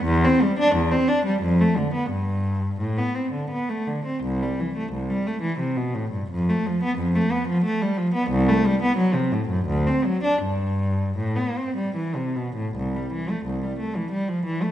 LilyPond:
\new Staff \with { instrumentName = "Cello" } { \clef bass \time 3/4 \key c \major \tempo 4 = 87 e,16 c'16 g16 d'16 e,16 c'16 d'16 g16 f,16 a16 d16 b16 | g,4 a,16 b16 c'16 d16 b16 a16 d16 c'16 | c,16 g16 e16 a16 c,16 g16 a16 e16 c16 b,16 a,16 g,16 | f,16 a16 f16 b16 f,16 a16 b16 f16 a16 g16 f16 b16 |
\key g \major c,16 a16 g16 b16 fis16 c16 a,16 fis,16 d,16 c'16 fis16 d'16 | g,4 a,16 b16 c'16 g16 e16 c16 b,16 a,16 | \key c \major c,16 g16 e16 a16 c,16 g16 a16 e16 g16 f16 e16 a16 | }